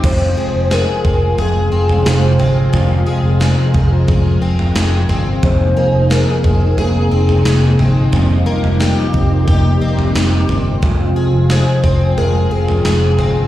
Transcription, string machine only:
0.04 5.40 C3 medium
0.04 5.40 F3 medium
0.04 8.09 G#3 medium
0.04 5.40 F4 medium
0.04 2.71 G#4 medium
2.74 5.41 A#4 medium
5.44 10.79 C3 medium
5.44 8.10 A#3 medium
5.44 10.79 D#4 medium
5.44 8.10 G#4 medium
8.13 10.80 G3 medium
8.13 10.80 A#3 medium
8.13 10.80 G4 medium
10.83 13.47 C3 medium
10.83 13.47 F3 medium
10.83 13.47 G#3 medium
10.83 13.47 F4 medium
10.83 13.47 G#4 medium

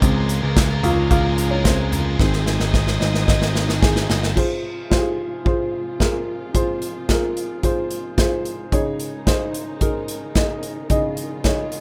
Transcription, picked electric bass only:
0.02 0.40 C#2 loud
0.43 0.81 C#2 medium
0.83 1.09 C#2 medium
1.11 2.15 C#2 medium
2.20 2.57 G#1 medium
2.60 2.98 G#1 medium
3.01 3.26 G#1 medium
3.28 4.06 G#1 medium
4.10 4.35 G1 medium

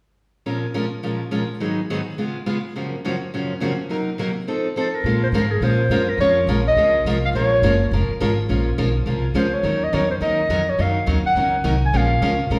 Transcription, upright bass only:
5.04 5.31 A#2 medium
5.32 5.60 G#2 medium
5.61 5.88 A#2 medium
5.89 6.17 F#2 medium
6.18 6.46 F2 medium
6.47 6.75 A#1 medium
6.75 7.04 C#2 medium
7.05 7.32 C2 medium
7.33 7.61 A#1 medium
7.62 7.90 F#1 medium
7.91 8.07 F1 medium
8.09 muted upright bass stroke soft
8.21 8.49 G#1 medium
8.49 8.77 A#1 medium
8.78 9.05 B1 medium
9.06 9.33 C2 medium
9.34 9.62 C#2 medium
9.63 9.91 D#2 medium
9.93 10.20 E2 medium
10.21 10.48 D#2 medium
10.49 10.77 F2 medium
10.79 11.06 F#2 medium
11.07 11.23 D#2 medium
11.24 muted upright bass stroke soft
11.35 11.63 C#2 medium
11.64 11.92 C2 medium
11.93 12.21 A#1 medium
12.22 12.50 C#2 medium
12.50 12.59 A#1 medium

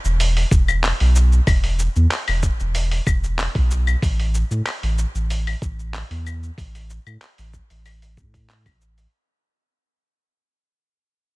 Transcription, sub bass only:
0.04 0.44 E1 medium
0.51 0.92 E1 medium
1.00 1.40 B1 loud
1.47 1.88 E1 medium
1.96 2.07 E2 loud
2.28 2.50 E1 loud
2.60 3.00 E1 medium
3.06 3.47 E1 medium
3.55 3.95 B1 loud
4.02 4.43 A1 loud
4.51 4.62 A2 medium
4.83 5.05 A1 loud
5.14 5.55 A1 medium
5.62 6.03 A1 medium
6.10 6.50 E2 loud
6.58 6.99 A1 loud
7.06 7.17 A2 loud
7.38 7.60 A1 loud
7.70 8.19 A1 medium
8.17 8.67 A2 loud
8.66 9.06 A1 loud

